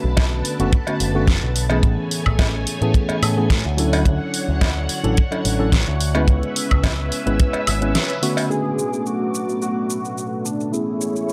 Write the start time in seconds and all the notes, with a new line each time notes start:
Already playing: D3 A3 B3 C#4 F#4 B4 A5
0.04 B1
0.17 kick, snare, closed hi-hat, cowbell
0.45 open hi-hat
0.59 F#1 D3 A3 B3 C#4 F#4, closed hi-hat
0.73 kick, closed hi-hat
0.87 D3 A3 B3 C#4 F#4, closed hi-hat, cowbell
1.00 F#1, open hi-hat
1.15 D3 A3 B3 C#4 F#4
1.27 kick, snare, closed hi-hat
1.43 B1
1.56 open hi-hat
1.69 E3 A3 B3 C#4 G#4, closed hi-hat, cowbell
1.83 A1 A3 C#4 G#5, kick, closed hi-hat
2.11 open hi-hat
2.26 A1, kick, high woodblock
2.39 kick, snare, closed hi-hat, cowbell
2.67 muted picked electric bass stroke, open hi-hat
2.81 A2 E3 A3 B3 C#4 G#4, closed hi-hat
2.94 kick, closed hi-hat
3.09 muted picked electric bass stroke, closed hi-hat, cowbell
3.22 A2, open hi-hat, high woodblock
3.37 E3 A3 B3 C#4 G#4
3.50 kick, snare, closed hi-hat
3.65 D2
3.77 D3 F#3 C#4 D4 E4 A4 C#5 F#5, open hi-hat
3.93 open hi-hat, cowbell
4.05 D2, kick, closed hi-hat
4.34 open hi-hat
4.49 D2
4.61 kick, snare, closed hi-hat, cowbell
4.89 open hi-hat
5.03 A1 F#3 C#4 D4 E4 A4, closed hi-hat
5.17 kick, closed hi-hat
5.31 F#3 C#4 D4 E4 A4, closed hi-hat, cowbell
5.45 A1, open hi-hat
5.59 F#3 C#4 D4 E4 A4
5.72 kick, snare, closed hi-hat
5.88 D2
6.01 open hi-hat
6.14 G#3 B3 C#4 E4 B4, closed hi-hat, cowbell
6.28 C#2 C#4 B4 E5, kick, closed hi-hat
6.43 closed hi-hat
6.56 open hi-hat
6.71 C#2, kick, closed hi-hat, high woodblock
6.84 kick, snare, closed hi-hat, cowbell
7.12 open hi-hat
7.26 G#1 G#3 B3 C#4 E4 B4, closed hi-hat
7.40 kick, closed hi-hat
7.53 muted picked electric bass stroke, closed hi-hat, cowbell
7.67 G#1, open hi-hat, high woodblock
7.81 G#3 B3 C#4 E4 B4, closed hi-hat
7.95 snare, closed hi-hat
8.10 closed hi-hat
8.22 D3 A3 B3 C#4 F#4, open hi-hat
8.37 open hi-hat, cowbell
8.50 A3 B3 C#4 D4 F#4 G#4 B4 D6, shaker
8.79 shaker
8.93 shaker
9.06 F#4, shaker
9.34 shaker
9.49 shaker
9.62 F#4, shaker
9.90 shaker
10.05 shaker
10.18 shaker
10.45 D4, shaker
10.60 shaker
10.72 A3 B3 C#4 E4 G#4 C#5, shaker
11.01 shaker
11.16 shaker
11.29 shaker